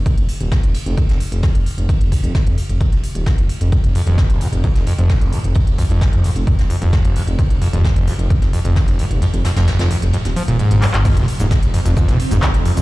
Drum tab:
CC |----------------|----------------|----------------|----------------|
RD |x-x-xxx-x-x-x-x-|xxx-x-x-x-xxx-xx|x-x-xxx-x-x-x-x-|xxx-x-x-x-xxx-xx|
HH |xxoxxxoxxxoxxxox|xxoxxxoxxxoxxxox|xxoxxxoxxxoxxxox|xxoxxxoxxxoxxxox|
SH |----------------|----------------|----------------|----------------|
CP |----------------|----------------|----------------|----------------|
SD |----o----o--o---|----o----o--o---|----o----o--o---|----o----o--o---|
BD |o---o---o---o---|o-o-o---o---o---|o---o---o---o---|o-o-o---o---o---|

CC |----------------|----------------|x---------------|
RD |x-x-xxx-x-x-x-x-|xxxxxxx-x-x-xx-x|x-x-xxx-x-x-x-x-|
HH |xxoxxxoxxxoxxxox|xxoxxxoxxxoxxxox|xxoxxxoxxxoxxxox|
SH |----------------|----------------|xx-xxx-xxx-xxx-x|
CP |----------------|--------------xx|------------x---|
SD |----o----o--o---|--oooo---o------|----o----o--o---|
BD |o---o---o---o---|----------------|o---o---o---o---|